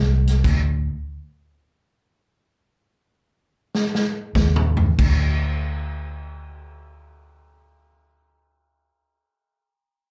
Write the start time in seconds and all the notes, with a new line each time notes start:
Already playing: C2
0.27 snare, closed hi-hat
0.44 D2, kick, closed hi-hat, crash
3.75 snare
3.95 snare
4.35 D#2, kick, snare, mid tom
4.56 mid tom
4.77 floor tom
4.98 D2, kick, crash